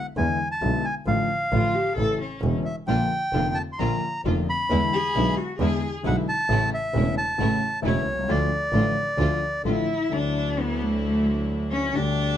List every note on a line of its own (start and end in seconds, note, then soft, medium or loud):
0.16 0.36 E2 medium
0.16 0.36 D3 medium
0.16 0.36 E3 medium
0.16 0.36 G#3 medium
0.16 0.36 B3 medium
0.16 0.36 E4 medium
0.16 0.49 G#5 medium
0.51 0.86 A5 medium
0.61 0.81 B1 medium
0.61 0.81 B2 medium
0.61 0.81 D3 medium
0.61 0.80 G#3 medium
0.61 0.81 B3 medium
0.61 0.81 E4 medium
0.85 0.95 G#5 medium
1.06 1.26 A1 medium
1.06 1.26 A2 medium
1.06 1.26 D3 medium
1.06 1.26 F3 medium
1.06 1.26 A3 medium
1.06 1.26 F4 medium
1.06 1.93 F5 medium
1.52 1.71 A1 medium
1.52 1.71 A2 medium
1.52 1.71 D3 medium
1.52 1.71 F3 medium
1.52 1.71 A3 medium
1.52 1.76 F4 medium
1.52 1.71 F4 medium
1.74 1.95 G4 medium
1.96 2.16 A1 medium
1.96 2.16 A2 medium
1.96 2.16 C#3 medium
1.96 2.16 E3 medium
1.96 2.16 A3 medium
1.96 2.17 E4 medium
1.96 2.17 A4 medium
2.21 2.52 C#4 medium
2.42 2.61 E1 medium
2.42 2.62 E1 medium
2.42 2.62 E2 medium
2.42 2.62 C#3 medium
2.42 2.62 E3 medium
2.42 2.62 A3 soft
2.42 2.62 E4 medium
2.65 2.76 E5 medium
2.87 3.07 A#1 medium
2.87 3.08 A#2 medium
2.87 3.07 D3 medium
2.87 3.07 F3 medium
2.87 3.08 A#3 medium
2.87 3.08 D4 medium
2.87 3.08 F4 medium
2.87 3.58 G5 medium
3.33 3.53 F1 medium
3.33 3.54 F2 medium
3.33 3.53 D3 medium
3.33 3.53 F3 medium
3.33 3.53 A#3 medium
3.33 3.54 A#3 soft
3.33 3.53 D4 medium
3.33 3.53 F4 medium
3.33 3.54 F4 medium
3.54 3.62 A5 medium
3.72 3.79 C6 medium
3.79 3.99 A#1 medium
3.79 3.98 A#2 medium
3.79 3.99 D3 medium
3.79 3.99 F3 medium
3.79 3.98 A#3 medium
3.79 3.98 D4 medium
3.79 3.98 F4 medium
3.79 3.99 F4 medium
3.79 4.21 A#5 medium
4.25 4.44 F1 medium
4.25 4.45 F1 medium
4.25 4.44 F2 medium
4.25 4.44 D3 medium
4.25 4.44 F3 medium
4.25 4.44 A#3 medium
4.25 4.44 A#3 soft
4.25 4.44 D4 medium
4.25 4.44 F4 medium
4.49 5.35 B5 medium
4.70 4.89 E2 medium
4.70 4.90 E2 medium
4.70 4.90 D3 medium
4.70 4.90 E3 medium
4.70 4.90 G#3 medium
4.70 4.90 B3 medium
4.70 4.90 D4 medium
4.70 4.90 E4 medium
4.93 5.39 G#4 medium
5.15 5.34 B1 medium
5.15 5.34 B2 medium
5.15 5.34 D3 medium
5.15 5.34 G#3 medium
5.15 5.35 G#3 medium
5.15 5.34 B3 medium
5.15 5.35 D4 medium
5.15 5.34 E4 medium
5.15 5.35 E4 medium
5.37 5.58 F#4 medium
5.59 5.79 E2 medium
5.59 5.79 D3 medium
5.59 5.79 E3 medium
5.59 5.79 G#3 medium
5.59 5.79 G#3 soft
5.59 5.79 B3 medium
5.59 5.79 D4 medium
5.59 5.79 E4 medium
5.59 5.91 G#4 medium
6.03 6.23 B1 medium
6.03 6.24 B1 medium
6.03 6.23 B2 medium
6.03 6.23 D3 medium
6.03 6.23 G#3 medium
6.03 6.24 G#3 medium
6.03 6.23 B3 soft
6.03 6.24 D4 medium
6.03 6.23 E4 medium
6.03 6.24 E4 medium
6.03 6.16 F#5 medium
6.29 6.70 A5 loud
6.49 6.68 A1 medium
6.49 6.69 A1 medium
6.49 6.68 A2 medium
6.49 6.68 C#3 medium
6.49 6.68 E3 medium
6.49 6.68 A3 medium
6.49 6.69 A3 medium
6.49 6.69 C#4 medium
6.49 6.69 E4 medium
6.49 6.70 E4 medium
6.74 7.15 E5 medium
6.94 7.13 E1 medium
6.94 7.13 E2 medium
6.94 7.13 C#3 medium
6.94 7.13 E3 medium
6.94 7.13 A3 medium
6.94 7.14 A3 medium
6.94 7.14 C#4 medium
6.94 7.14 E4 medium
7.18 7.80 A5 medium
7.38 7.57 A1 medium
7.38 7.58 A1 medium
7.38 7.58 A2 medium
7.38 7.57 C#3 medium
7.38 7.58 E3 medium
7.38 7.58 A3 medium
7.38 7.58 C#4 medium
7.38 7.57 E4 medium
7.38 7.59 E4 medium
7.82 8.02 E1 medium
7.82 8.03 E1 medium
7.82 8.02 E2 medium
7.82 8.02 C#3 medium
7.82 8.02 E3 medium
7.82 8.02 A3 medium
7.82 8.03 A3 medium
7.82 8.03 C#4 medium
7.82 8.02 E4 medium
7.82 8.03 E4 medium
7.86 8.31 C#5 medium
8.06 8.27 C2 medium
8.13 8.18 B1 soft
8.18 8.24 C2 medium
8.23 8.29 C#2 medium
8.28 8.47 D2 medium
8.28 8.48 D3 medium
8.28 8.47 F3 medium
8.28 8.47 A3 medium
8.28 8.48 A3 medium
8.28 8.47 D4 medium
8.28 8.47 F4 medium
8.28 8.48 F4 medium
8.28 9.62 D5 medium
8.72 8.92 A1 medium
8.72 8.93 A1 medium
8.72 8.93 A2 medium
8.72 8.93 D3 medium
8.72 8.92 F3 medium
8.72 8.93 A3 medium
8.72 8.93 D4 medium
8.72 8.93 F4 medium
9.18 9.38 D2 medium
9.18 9.38 D3 medium
9.18 9.38 F3 medium
9.18 9.38 A3 medium
9.18 9.39 D4 medium
9.18 9.38 F4 medium
9.18 9.39 F4 medium
9.64 9.84 A1 medium
9.64 9.85 A1 medium
9.64 9.85 A2 medium
9.64 9.85 D3 medium
9.64 9.85 F3 medium
9.64 9.85 A3 medium
9.64 9.85 D4 medium
9.64 10.14 E4 medium
9.64 9.85 F4 medium
10.10 11.85 D2 medium
10.10 11.85 D3 medium
10.10 11.85 F#3 soft
10.10 11.85 F#3 medium
10.10 11.86 A3 medium
10.10 11.85 D4 medium
10.10 10.61 D4 medium
10.10 11.86 E4 medium
10.14 11.86 E4 medium
10.60 10.83 B3 medium
10.82 11.03 A3 medium
11.04 11.46 A3 medium
11.71 11.96 C#4 medium
11.93 12.37 D2 medium
11.93 12.37 D3 medium
11.93 12.37 G3 soft
11.93 12.37 A3 medium
11.93 12.37 D4 loud
11.93 12.37 D4 medium
11.93 12.37 G4 medium